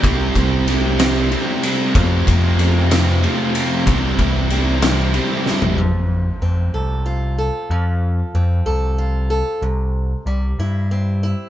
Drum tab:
RD |x-x-x-x-x-x-|x-x-x-x-x-x-|x-x-x-x-x---|------------|
SD |------o-----|------o-----|------o---o-|------------|
FT |------------|------------|-----------o|------------|
BD |o-o---------|o-o---------|o-o---------|------------|

RD |------------|------------|
SD |------------|------------|
FT |------------|------------|
BD |------------|------------|